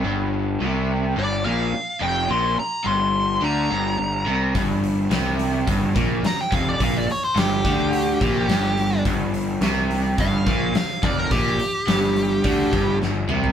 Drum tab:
HH |----------------|----------------|o-o-o-o-o-o-o-o-|o-o-o-o-o-o-o-o-|
SD |----------------|----------------|----o-------o---|----o-------o---|
T2 |----------------|----------------|----------------|----------------|
FT |----------------|----------------|----------------|----------------|
BD |----------------|----------------|o-------o-o---o-|o-----o---o-----|

HH |o-o-o-o-o-o-o-o-|o-o-o-o-o-o-----|
SD |----o-------o---|----o-------o---|
T2 |----------------|--------------o-|
FT |----------------|---------------o|
BD |o-------o-o---o-|o-------o-o-----|